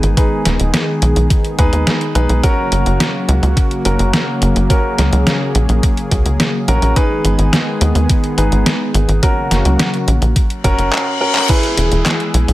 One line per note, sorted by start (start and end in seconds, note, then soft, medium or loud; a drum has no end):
0.00 0.15 G#1 medium
0.00 2.40 D#3 medium
0.00 2.40 G#3 medium
0.00 2.40 B3 medium
0.00 0.14 D#4 medium
0.00 0.14 G#4 medium
0.00 2.40 G#4 loud
0.00 0.14 B4 medium
0.00 closed hi-hat medium
0.17 1.56 D#4 medium
0.17 1.56 G#4 medium
0.17 1.56 B4 medium
0.17 kick loud
0.17 closed hi-hat medium
0.45 0.58 D#1 medium
0.45 snare medium
0.45 closed hi-hat medium
0.60 0.72 D#1 medium
0.60 closed hi-hat medium
0.74 snare loud
0.74 closed hi-hat medium
1.02 1.14 B1 medium
1.02 closed hi-hat medium
1.16 1.28 B1 medium
1.16 closed hi-hat medium
1.30 kick loud
1.30 closed hi-hat medium
1.45 closed hi-hat soft
1.59 1.71 D#2 medium
1.59 2.12 D#4 medium
1.59 2.12 G#4 medium
1.59 2.12 B4 loud
1.59 kick loud
1.59 closed hi-hat medium
1.73 1.85 D#2 medium
1.73 closed hi-hat medium
1.87 snare loud
1.87 closed hi-hat medium
2.01 closed hi-hat soft
2.15 2.27 B1 loud
2.15 2.40 D#4 medium
2.15 2.40 G#4 medium
2.15 2.40 B4 loud
2.15 closed hi-hat medium
2.29 2.42 B1 medium
2.29 closed hi-hat medium
2.44 6.93 C#3 medium
2.44 6.93 F#3 medium
2.44 6.93 A#3 medium
2.44 3.82 C#4 medium
2.44 3.82 F#4 medium
2.44 4.68 F#4 medium
2.44 3.82 A#4 loud
2.44 kick loud
2.44 closed hi-hat medium
2.72 2.84 F#1 medium
2.72 closed hi-hat medium
2.86 2.98 F#1 medium
2.86 closed hi-hat soft
3.00 snare loud
3.00 closed hi-hat medium
3.28 3.41 C#2 medium
3.28 closed hi-hat medium
3.43 3.55 C#2 medium
3.43 closed hi-hat medium
3.57 kick loud
3.57 closed hi-hat medium
3.71 closed hi-hat soft
3.85 3.97 F#1 medium
3.85 4.67 C#4 medium
3.85 4.67 F#4 medium
3.85 4.67 A#4 medium
3.85 closed hi-hat medium
3.99 4.11 F#1 medium
3.99 closed hi-hat medium
4.13 snare loud
4.13 closed hi-hat medium
4.42 4.54 F#1 loud
4.42 closed hi-hat medium
4.56 4.68 F#1 medium
4.56 closed hi-hat medium
4.70 6.65 C#4 medium
4.70 6.65 F#4 medium
4.70 6.94 G#4 medium
4.70 6.65 A#4 medium
4.70 kick loud
4.70 closed hi-hat medium
4.98 5.11 C#2 medium
4.98 snare medium
4.98 closed hi-hat medium
5.12 5.25 C#2 medium
5.12 closed hi-hat medium
5.27 snare loud
5.27 closed hi-hat medium
5.55 5.67 A#1 medium
5.55 closed hi-hat medium
5.69 5.81 A#1 medium
5.69 closed hi-hat soft
5.83 kick loud
5.83 closed hi-hat medium
5.97 closed hi-hat soft
6.11 6.24 C#2 medium
6.11 kick loud
6.11 closed hi-hat medium
6.25 6.38 C#2 medium
6.25 closed hi-hat soft
6.40 snare loud
6.40 closed hi-hat medium
6.68 6.80 A#1 loud
6.68 6.93 C#4 medium
6.68 6.93 F#4 medium
6.68 6.93 A#4 medium
6.68 closed hi-hat medium
6.82 6.94 A#1 medium
6.82 closed hi-hat soft
6.96 9.21 D#3 medium
6.96 9.20 G#3 medium
6.96 9.21 B3 medium
6.96 8.35 D#4 medium
6.96 9.21 G#4 loud
6.96 8.35 G#4 medium
6.96 8.35 B4 loud
6.96 kick loud
6.96 closed hi-hat medium
7.24 7.37 G#1 loud
7.24 closed hi-hat medium
7.38 7.51 G#1 medium
7.38 closed hi-hat medium
7.53 snare loud
7.53 closed hi-hat medium
7.81 7.93 D#2 medium
7.81 closed hi-hat medium
7.95 8.08 D#2 medium
7.95 closed hi-hat medium
8.10 kick loud
8.10 closed hi-hat medium
8.24 closed hi-hat soft
8.38 8.50 G#1 medium
8.38 9.19 D#4 medium
8.38 9.19 G#4 medium
8.38 9.19 B4 medium
8.38 closed hi-hat medium
8.52 8.64 G#1 medium
8.52 closed hi-hat medium
8.66 snare loud
8.66 closed hi-hat medium
8.94 9.07 G#1 loud
8.94 closed hi-hat medium
9.08 9.21 G#1 medium
9.08 closed hi-hat medium
9.23 10.91 C#3 medium
9.23 10.91 F#3 medium
9.23 10.91 A#3 medium
9.23 10.62 C#4 medium
9.23 10.61 F#4 medium
9.23 10.91 F#4 loud
9.23 10.61 A#4 medium
9.23 kick loud
9.23 closed hi-hat medium
9.51 9.63 F#1 loud
9.51 snare medium
9.51 closed hi-hat medium
9.65 9.77 C#2 medium
9.65 closed hi-hat medium
9.79 snare loud
9.79 closed hi-hat medium
9.94 closed hi-hat soft
10.07 10.20 A#1 medium
10.07 closed hi-hat medium
10.22 10.34 A#1 medium
10.22 closed hi-hat medium
10.36 kick loud
10.36 closed hi-hat medium
10.36 reverse cymbal medium
10.50 closed hi-hat soft
10.64 10.77 F#1 medium
10.64 11.18 C#4 medium
10.64 11.18 F#4 medium
10.64 11.18 A#4 loud
10.64 kick loud
10.64 closed hi-hat medium
10.78 10.91 F#1 medium
10.78 closed hi-hat medium
10.93 clap loud
11.21 11.46 C#4 medium
11.21 11.46 F#4 medium
11.21 11.46 A#4 loud
11.35 clap medium
11.49 12.53 E3 medium
11.49 12.53 G#3 medium
11.49 12.53 B3 medium
11.49 12.53 E4 medium
11.49 12.53 G#4 medium
11.49 12.53 B4 loud
11.49 kick loud
11.49 closed hi-hat medium
11.49 crash loud
11.49 downlifter medium
11.63 closed hi-hat soft
11.77 11.90 E1 loud
11.77 closed hi-hat medium
11.92 12.04 E1 medium
11.92 closed hi-hat medium
12.06 snare loud
12.06 clap loud
12.06 closed hi-hat medium
12.20 closed hi-hat soft
12.34 12.46 B1 medium
12.34 closed hi-hat medium
12.48 12.53 B1 medium
12.48 closed hi-hat medium